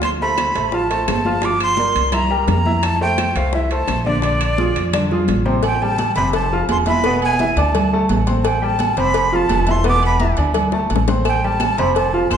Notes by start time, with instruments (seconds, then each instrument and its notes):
Already playing: upright bass D2, grand piano F3 F4 F5
0.02 flute C6, high bongo, high conga, high timbale, claves
0.21 grand piano A3 A4 C5, flute B5, high conga
0.38 high bongo, high conga, high timbale, claves
0.55 upright bass A1, grand piano A3 A4 C5, high bongo, high timbale
0.72 grand piano F3 F4 F5, flute A5, high bongo, high conga
0.90 grand piano A3 A4 C5, high bongo, high conga, high timbale
1.08 upright bass G1, flute A5, high bongo, low bongo, high conga, high timbale, low timbale, claves
1.25 grand piano F3 F4 F5, high bongo, high conga
1.42 grand piano F3 F4 F5, flute D6, high bongo, high conga, high timbale
1.60 flute C6, high conga, high timbale, claves
1.77 grand piano A#3 A#4 D5, high bongo, high conga
1.95 upright bass C2, high bongo, high conga, high timbale
2.12 grand piano E3 E4 E5, flute A#5, high bongo, high conga, low conga, high timbale, claves
2.30 grand piano G3 G4 A#4, high bongo, high conga
2.48 upright bass F2, flute A#5, high bongo, low bongo, high conga, high timbale, low timbale
2.65 grand piano E3 E4 E5, high bongo, high conga
2.83 flute A5, high bongo, high conga, high timbale, claves
3.01 grand piano A3 A4 C5, flute G5, high conga
3.18 high bongo, high conga, high timbale, claves
3.36 upright bass C2, grand piano A3 A4 C5, flute F5, high bongo, high timbale
3.53 grand piano E3 E4 E5, flute E5, high bongo, high conga
3.70 grand piano A3 A4 C5, flute A5, high bongo, high conga, high timbale
3.88 upright bass A#1, high bongo, low bongo, high conga, high timbale, claves
4.05 grand piano D3 D4 D5, flute D5, high bongo, high conga
4.22 grand piano D3 D4 D5, high bongo, high conga, high timbale
4.41 high conga, high timbale, claves
4.58 grand piano F3 F4 G#4, high bongo, high conga
4.76 upright bass F2, high bongo, high conga, high timbale
4.93 grand piano D3 D4 D5, high bongo, high conga, low conga, high timbale, claves
5.11 grand piano F3 F4 G#4, high bongo, high conga, low conga
5.28 upright bass A1, high bongo, low bongo, high conga, high timbale
5.45 grand piano C3 C4 C5, high bongo, high conga
5.63 flute G5, cowbell, low agogo
5.81 grand piano G3 G4 G5, flute A5, high conga
5.98 cowbell, high conga, low agogo
6.16 upright bass F1, grand piano C3 C4 C5, flute B5, cowbell
6.33 flute A5, cowbell, high conga, low agogo
6.52 grand piano F3 F4 F5, high conga
6.69 upright bass E1, flute C6, cowbell, high conga, low timbale, low agogo
6.86 grand piano E3 E4 E5, flute B5, cowbell, high conga, low agogo
7.04 grand piano B2 B3 B4, cowbell, high conga
7.22 flute G#5, high conga, low agogo
7.39 grand piano E3 E4 E5, cowbell, high conga
7.56 upright bass D2, grand piano D4 D5 D6, flute A5, cowbell, high conga, low agogo
7.75 cowbell, high conga, low conga, low agogo
7.93 grand piano A3 A4 A5, high conga
8.09 upright bass A1, cowbell, high conga, low timbale, low agogo
8.27 grand piano C4 C5 C6, cowbell, high conga, low agogo
8.42 flute A5, cowbell, low agogo
8.47 flute G5
8.62 grand piano G3 G4 G5, flute A5, high conga
8.79 cowbell, high conga, low agogo
8.97 upright bass F1, grand piano C3 C4 C5, flute B5, cowbell
9.14 cowbell, high conga, low agogo
9.32 grand piano F3 F4 F5, flute A5, high conga
9.49 upright bass E1, cowbell, high conga, low timbale, low agogo
9.67 grand piano E3 E4 E5, cowbell, high conga, low agogo
9.71 flute C6
9.84 grand piano B2 B3 B4, cowbell
9.89 flute D6
10.03 flute B5, high conga, low agogo
10.20 grand piano E3 E4 E5, cowbell, high conga
10.37 upright bass D2, grand piano D4 D5 D6, cowbell, high conga, low agogo
10.54 cowbell, high conga, low conga, low agogo
10.72 grand piano A3 A4 A5, high bongo, high conga
10.90 upright bass A1, cowbell, high conga, low agogo
10.96 low bongo
11.08 grand piano C4 C5 C6, cowbell, low bongo, high conga, low agogo
11.25 flute G5, cowbell, high conga, low agogo, claves
11.42 grand piano G3 G4 G5, flute A5, high conga
11.60 cowbell, high conga, low agogo, claves
11.78 upright bass F1, grand piano C3 C4 C5, flute B5, cowbell
11.95 flute A5, cowbell, high conga, low agogo
12.13 grand piano F3 F4 F5, high conga
12.31 upright bass E1, flute C6, cowbell, high conga, low agogo, claves